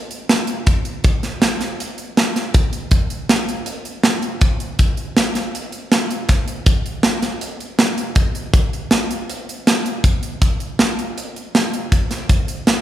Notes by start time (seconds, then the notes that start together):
0.11 closed hi-hat
0.29 snare, closed hi-hat
0.47 closed hi-hat
0.67 kick, closed hi-hat
0.85 closed hi-hat
1.04 kick, closed hi-hat
1.23 snare, closed hi-hat
1.42 snare, closed hi-hat
1.61 snare, closed hi-hat
1.80 closed hi-hat
1.98 closed hi-hat
2.17 snare, closed hi-hat
2.36 snare, closed hi-hat
2.54 kick, closed hi-hat
2.73 closed hi-hat
2.91 kick, closed hi-hat
3.10 closed hi-hat
3.29 snare, closed hi-hat
3.49 closed hi-hat
3.66 closed hi-hat
3.85 closed hi-hat
4.03 snare, closed hi-hat
4.22 closed hi-hat
4.41 kick, closed hi-hat
4.60 closed hi-hat
4.79 kick, closed hi-hat
4.97 closed hi-hat
5.17 snare, closed hi-hat
5.35 snare, closed hi-hat
5.55 closed hi-hat
5.72 closed hi-hat
5.92 snare, closed hi-hat
6.11 closed hi-hat
6.29 kick, snare, closed hi-hat
6.48 closed hi-hat
6.66 kick, closed hi-hat
6.86 closed hi-hat
7.03 snare, closed hi-hat
7.22 snare, closed hi-hat
7.41 closed hi-hat
7.60 closed hi-hat
7.79 snare, closed hi-hat
7.98 closed hi-hat
8.15 kick, closed hi-hat
8.35 closed hi-hat
8.54 kick, closed hi-hat
8.73 closed hi-hat
8.91 snare, closed hi-hat
9.11 closed hi-hat
9.30 closed hi-hat
9.49 closed hi-hat
9.67 snare, closed hi-hat
9.86 closed hi-hat
10.04 kick, closed hi-hat
10.23 closed hi-hat
10.42 kick, closed hi-hat
10.60 closed hi-hat
10.79 snare, closed hi-hat
10.99 closed hi-hat
11.18 closed hi-hat
11.36 closed hi-hat
11.55 snare, closed hi-hat
11.74 closed hi-hat
11.92 kick, closed hi-hat
12.11 snare, closed hi-hat
12.29 kick, closed hi-hat
12.48 closed hi-hat
12.67 snare, closed hi-hat